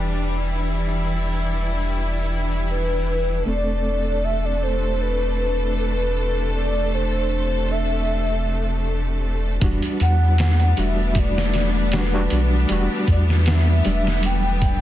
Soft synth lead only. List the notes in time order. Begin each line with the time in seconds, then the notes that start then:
2.70 B4
3.47 D5
4.24 E5
4.45 D5
4.63 C5
5.01 B4
5.78 B4
6.55 D5
6.94 C5
7.71 E5
10.02 F#5
10.80 E5
11.18 D5
11.95 B4
13.10 D5
13.50 E5
14.25 G5